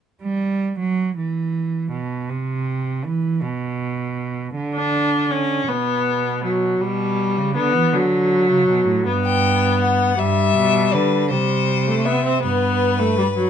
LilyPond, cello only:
\new Staff \with { instrumentName = "Cello" } { \clef bass \time 6/8 \key g \major \tempo 4. = 53 r16 g8. fis8 e4 b,8 | c4 e8 b,4. | d4. b,4. | b,8. cis16 d16 e16 d8. cis16 b,16 a,16 |
g,4. g,8 b,8 d8 | c4. g,4. | }